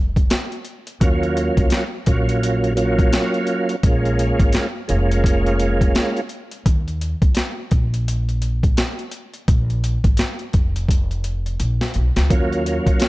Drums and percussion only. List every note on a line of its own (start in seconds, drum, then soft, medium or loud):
0.16 kick medium
0.16 closed hi-hat medium
0.30 snare loud
0.30 closed hi-hat medium
0.52 closed hi-hat soft
0.65 closed hi-hat medium
0.87 closed hi-hat medium
1.01 kick loud
1.01 closed hi-hat medium
1.23 closed hi-hat soft
1.37 closed hi-hat medium
1.57 kick loud
1.57 closed hi-hat medium
1.70 snare loud
1.70 closed hi-hat medium
2.06 kick medium
2.06 closed hi-hat medium
2.29 closed hi-hat medium
2.43 closed hi-hat loud
2.64 closed hi-hat soft
2.77 closed hi-hat medium
2.99 kick loud
2.99 closed hi-hat medium
3.13 snare loud
3.13 closed hi-hat medium
3.34 closed hi-hat soft
3.47 closed hi-hat medium
3.69 closed hi-hat medium
3.83 kick loud
3.83 closed hi-hat medium
4.05 closed hi-hat soft
4.19 closed hi-hat medium
4.39 kick loud
4.39 closed hi-hat medium
4.52 snare loud
4.52 closed hi-hat medium
4.89 closed hi-hat medium
5.11 closed hi-hat medium
5.24 kick medium
5.24 closed hi-hat loud
5.46 closed hi-hat soft
5.60 closed hi-hat medium
5.81 kick medium
5.81 closed hi-hat medium
5.95 snare loud
5.95 closed hi-hat medium
6.17 closed hi-hat soft
6.29 closed hi-hat medium
6.51 closed hi-hat medium
6.66 kick loud
6.66 closed hi-hat medium
6.88 closed hi-hat soft
7.01 closed hi-hat medium
7.22 kick loud
7.22 closed hi-hat medium
7.35 snare loud
7.35 closed hi-hat medium
7.71 kick medium
7.71 closed hi-hat medium
7.94 closed hi-hat medium
8.08 closed hi-hat loud
8.29 closed hi-hat soft
8.42 closed hi-hat medium
8.63 kick medium
8.63 closed hi-hat medium
8.77 snare loud
8.77 closed hi-hat medium
8.99 closed hi-hat soft
9.11 closed hi-hat medium
9.34 closed hi-hat medium
9.48 kick loud
9.48 closed hi-hat medium
9.70 closed hi-hat soft
9.84 closed hi-hat medium
10.04 kick loud
10.04 closed hi-hat medium
10.17 snare loud
10.17 closed hi-hat medium
10.39 closed hi-hat soft
10.53 kick medium
10.53 closed hi-hat medium
10.76 closed hi-hat medium
10.89 kick medium
10.89 closed hi-hat loud
11.11 closed hi-hat soft
11.24 closed hi-hat medium
11.46 closed hi-hat medium
11.60 closed hi-hat medium
11.81 snare medium
11.81 closed hi-hat soft
11.94 closed hi-hat medium
12.16 snare medium
12.16 closed hi-hat medium
12.30 kick loud
12.30 closed hi-hat medium
12.52 closed hi-hat soft
12.66 closed hi-hat medium
12.87 kick loud
12.87 closed hi-hat medium
13.00 snare loud
13.00 closed hi-hat medium